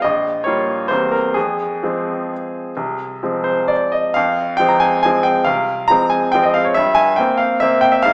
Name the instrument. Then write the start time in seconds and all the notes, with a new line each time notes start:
grand piano
0.02 A#1 D#5
0.44 G3 A#3 F4 C#5
0.88 E2 G3 A#3 C4 C5
1.11 A#4
1.34 F2 G#4
1.83 F3 G#3 C4
2.77 C2
3.23 F3 G#3 C4
3.44 C5
3.68 D5
3.92 D#5
4.14 F2 F5
4.57 F3 G#3 C4 G5
4.69 A#5
4.80 G#5
5.03 F3 G#3 C4 G#5
5.23 G5
5.44 C2 F5
5.88 F3 G#3 C4 A#5
6.10 G#5
6.32 F3 G#3 C4 G5
6.43 D#5
6.54 F5
6.65 C#5
6.74 G2 E5
6.95 G#5
7.16 A#3 C4 G5
7.38 F5
7.60 A#3 C4 E5
7.81 G5
7.92 E5
8.03 G#2 F5